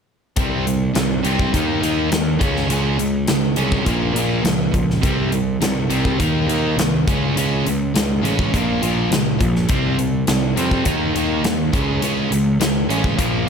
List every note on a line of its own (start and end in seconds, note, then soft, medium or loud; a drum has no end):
0.36 0.89 C2 medium
0.36 0.64 C3 medium
0.36 0.64 G3 medium
0.36 0.65 C4 medium
0.36 kick loud
0.36 closed hi-hat medium
0.66 0.92 C3 medium
0.66 0.92 G3 medium
0.66 closed hi-hat medium
0.94 1.21 C2 medium
0.94 1.21 C3 medium
0.94 1.21 G3 medium
0.94 snare loud
0.94 closed hi-hat medium
1.23 1.50 C2 medium
1.23 1.51 C3 medium
1.23 1.52 G3 medium
1.23 1.52 C4 loud
1.23 closed hi-hat medium
1.39 kick medium
1.52 1.80 D#2 medium
1.52 1.79 D#3 medium
1.52 1.80 A#3 medium
1.52 1.81 D#4 medium
1.52 kick medium
1.52 closed hi-hat medium
1.80 2.09 D#2 medium
1.80 2.09 D#3 medium
1.80 2.09 A#3 medium
1.80 2.10 D#4 loud
1.80 closed hi-hat medium
2.11 2.38 D#2 medium
2.11 2.37 D#3 medium
2.11 2.37 A#3 medium
2.11 snare loud
2.11 closed hi-hat medium
2.39 2.67 C#2 medium
2.39 2.67 C#3 medium
2.39 2.68 G#3 medium
2.39 2.68 C#4 loud
2.39 kick medium
2.39 closed hi-hat medium
2.56 snare soft
2.70 2.96 C#2 medium
2.70 2.97 C#3 medium
2.70 2.98 G#3 medium
2.70 2.98 C#4 loud
2.70 closed hi-hat medium
2.99 3.25 C#2 medium
2.99 3.25 C#3 medium
2.99 3.25 G#3 medium
2.99 closed hi-hat medium
3.27 3.55 C#2 medium
3.27 3.54 C#3 medium
3.27 3.54 G#3 medium
3.27 snare loud
3.27 closed hi-hat medium
3.56 3.84 C2 medium
3.56 3.84 C#3 medium
3.56 3.85 G#3 loud
3.56 3.85 C#4 loud
3.56 closed hi-hat medium
3.72 kick medium
3.85 4.13 A#1 medium
3.85 4.13 A#2 medium
3.85 4.13 F3 medium
3.85 4.14 A#3 medium
3.85 kick medium
3.85 closed hi-hat medium
4.15 4.41 A#1 medium
4.15 4.43 A#2 medium
4.15 4.44 F3 medium
4.15 4.44 A#3 loud
4.15 closed hi-hat medium
4.43 4.70 C#2 medium
4.43 4.71 A#2 medium
4.43 4.71 F3 medium
4.43 snare loud
4.43 closed hi-hat medium
4.73 5.00 C#2 medium
4.73 5.00 A#2 medium
4.73 5.00 F3 medium
4.73 kick medium
4.73 closed hi-hat medium
4.90 snare soft
5.02 5.56 C2 medium
5.02 5.30 C3 medium
5.02 5.30 G3 medium
5.02 5.31 C4 medium
5.02 kick loud
5.02 closed hi-hat medium
5.32 5.59 C3 medium
5.32 5.59 G3 medium
5.32 closed hi-hat medium
5.60 5.87 C2 medium
5.60 5.87 C3 medium
5.60 5.88 G3 medium
5.60 snare loud
5.60 closed hi-hat medium
5.90 6.20 C2 medium
5.90 6.17 C3 medium
5.90 6.17 G3 loud
5.90 6.18 C4 loud
5.90 closed hi-hat medium
6.05 kick medium
6.19 6.46 D#2 medium
6.19 6.46 D#3 medium
6.19 6.47 A#3 medium
6.19 6.47 D#4 loud
6.19 kick medium
6.19 closed hi-hat medium
6.47 6.74 D#2 medium
6.47 6.75 D#3 medium
6.47 6.76 A#3 medium
6.47 6.76 D#4 medium
6.47 closed hi-hat medium
6.77 7.03 C2 medium
6.77 7.04 D#3 medium
6.77 7.04 A#3 medium
6.77 snare loud
6.77 closed hi-hat medium
7.08 7.33 C#2 medium
7.08 7.35 C#3 medium
7.08 7.35 G#3 medium
7.08 7.35 C#4 loud
7.08 kick loud
7.08 closed hi-hat medium
7.36 7.62 C#2 medium
7.36 7.64 C#3 medium
7.36 7.64 G#3 loud
7.36 7.64 C#4 medium
7.36 closed hi-hat medium
7.66 7.92 C#2 medium
7.66 7.92 C#3 medium
7.66 7.92 G#3 medium
7.66 closed hi-hat medium
7.94 8.21 C#2 medium
7.94 8.20 C#3 medium
7.94 8.20 G#3 medium
7.94 snare loud
7.94 closed hi-hat medium
8.22 8.49 A1 medium
8.22 8.50 C#3 medium
8.22 8.50 G#3 medium
8.22 8.51 C#4 loud
8.22 closed hi-hat medium
8.39 kick medium
8.52 8.79 A#1 medium
8.52 8.79 A#2 medium
8.52 8.80 F3 medium
8.52 8.81 A#3 medium
8.52 kick medium
8.52 closed hi-hat medium
8.81 9.09 A#1 medium
8.81 9.08 A#2 medium
8.81 9.09 F3 medium
8.81 9.09 A#3 loud
8.81 closed hi-hat medium
9.10 9.37 C#2 medium
9.10 9.36 A#2 medium
9.10 9.37 F3 medium
9.10 snare loud
9.10 closed hi-hat medium
9.39 9.66 A#1 medium
9.39 9.65 A#2 medium
9.39 9.65 F3 medium
9.39 kick medium
9.39 closed hi-hat medium
9.56 snare soft
9.68 10.21 C2 medium
9.68 9.96 C3 medium
9.68 9.96 G3 medium
9.68 9.97 C4 loud
9.68 kick loud
9.68 closed hi-hat medium
9.98 10.24 C3 medium
9.98 10.24 G3 medium
9.98 closed hi-hat medium
10.27 10.54 C2 medium
10.27 10.53 C3 medium
10.27 10.53 G3 medium
10.27 snare loud
10.27 closed hi-hat medium
10.56 10.82 F2 medium
10.56 10.83 C3 medium
10.56 10.84 G3 medium
10.56 10.84 C4 medium
10.56 closed hi-hat medium
10.71 kick medium
10.84 11.12 D#2 medium
10.84 11.12 D#3 medium
10.84 11.12 A#3 medium
10.84 11.13 D#4 medium
10.84 kick medium
10.84 closed hi-hat medium
11.14 11.41 D#2 medium
11.14 11.41 D#3 medium
11.14 11.42 A#3 loud
11.14 11.42 D#4 loud
11.14 closed hi-hat medium
11.43 11.70 D#2 medium
11.43 11.69 D#3 medium
11.43 11.69 A#3 medium
11.43 snare loud
11.43 closed hi-hat medium
11.72 11.99 C#2 medium
11.72 12.00 C#3 medium
11.72 12.00 G#3 medium
11.72 12.00 C#4 medium
11.72 kick loud
11.72 closed hi-hat medium
12.02 12.28 C#2 medium
12.02 12.29 C#3 medium
12.02 12.30 G#3 medium
12.02 12.30 C#4 loud
12.02 closed hi-hat loud
12.31 12.57 C#2 medium
12.31 12.57 C#3 medium
12.31 12.57 G#3 medium
12.31 closed hi-hat medium
12.60 12.86 C#2 medium
12.60 12.86 C#3 medium
12.60 12.86 G#3 medium
12.60 snare loud
12.60 closed hi-hat medium
12.89 13.15 A1 medium
12.89 13.16 C#3 medium
12.89 13.16 G#3 loud
12.89 13.17 C#4 loud
12.89 closed hi-hat medium
13.04 kick medium
13.16 13.44 A#1 medium
13.16 13.44 A#2 medium
13.16 13.45 F3 loud
13.16 13.45 A#3 medium
13.16 kick medium
13.16 closed hi-hat medium
13.46 13.49 A#2 medium